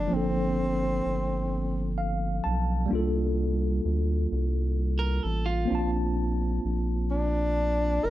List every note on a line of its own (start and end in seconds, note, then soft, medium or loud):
0.00 0.14 D4 medium
0.00 0.11 A4 medium
0.07 2.84 F3 medium
0.07 2.85 A#3 soft
0.12 1.01 G1 medium
0.12 2.87 C4 soft
0.12 1.98 C4 medium
0.12 2.88 D4 soft
0.17 2.89 A4 medium
1.06 2.41 G1 medium
1.98 2.41 F5 medium
2.44 2.87 B1 medium
2.44 2.87 A5 medium
2.86 5.63 G3 medium
2.86 5.64 A#3 medium
2.91 3.80 C2 loud
2.91 5.66 D4 medium
2.91 5.67 F4 medium
2.95 5.68 A4 medium
3.85 4.27 D2 medium
4.32 5.20 C2 medium
4.99 5.23 A#4 medium
5.23 5.66 A1 medium
5.23 5.45 A4 medium
5.46 5.90 F4 medium
5.65 8.10 A#3 medium
5.65 8.10 C4 medium
5.70 6.60 A#1 loud
5.70 8.10 D4 medium
5.70 8.10 F4 medium
5.75 8.10 A5 medium
6.65 7.99 A#1 medium
7.11 8.06 D4 medium
8.04 8.10 F#1 medium
8.04 8.10 A#4 medium